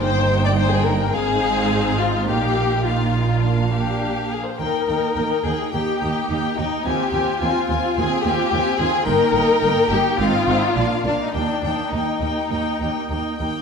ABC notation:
X:1
M:4/4
L:1/16
Q:1/4=106
K:Eb
V:1 name="Violin section"
g8 f8 | f4 f4 f6 z2 | g2 g2 g2 g2 g2 g2 g2 g2 | a2 a2 a2 a2 a2 a2 a2 a2 |
g2 g2 g2 g2 f2 f2 f2 f2 | g2 g2 g2 g2 g2 g2 g2 g2 |]
V:2 name="Violin section"
c3 d c A B2 A6 F2 | G4 F6 G4 A c | B6 A2 G6 E2 | G4 F4 A2 G4 A2 |
B6 G2 F6 D E | D4 E8- E2 z2 |]
V:3 name="Viola section"
[B,E]8 [CE]8 | [B,E]4 [B,E]4 [B,D]6 z2 | [B,E]2 [B,E]2 [B,E]2 [B,E]2 [B,E]2 [B,E]2 [B,E]2 [B,E]2 | [CF]2 [CF]2 [CF]2 [CF]2 [CF]2 [CF]2 [CF]2 [CF]2 |
[B,E]2 [B,E]2 [B,E]2 [B,E]2 [CE]2 [CE]2 [B,D]2 [B,D]2 | [B,E]2 [B,E]2 [B,E]2 [B,E]2 [B,E]2 [B,E]2 [B,E]2 [B,E]2 |]
V:4 name="Cello section" clef=bass
G,,8 A,,8 | B,,12- B,,2 z2 | E,,2 E,,2 E,,2 E,,2 E,,2 E,,2 E,,2 E,,2 | E,,2 E,,2 E,,2 E,,2 E,,2 E,,2 E,,2 E,,2 |
G,,2 G,,2 G,,2 G,,2 A,,2 A,,2 B,,2 B,,2 | E,,2 E,,2 E,,2 E,,2 E,,2 E,,2 E,,2 E,,2 |]
V:5 name="Double bass section" clef=bass
G,,,8 A,,,8 | B,,,12- B,,,2 z2 | E,,2 E,,2 E,,2 E,,2 E,,2 E,,2 E,,2 E,,2 | E,,2 E,,2 E,,2 E,,2 E,,2 E,,2 E,,2 E,,2 |
G,,,2 G,,,2 G,,,2 G,,,2 A,,,2 A,,,2 B,,,2 B,,,2 | E,,2 E,,2 E,,2 E,,2 E,,2 E,,2 E,,2 E,,2 |]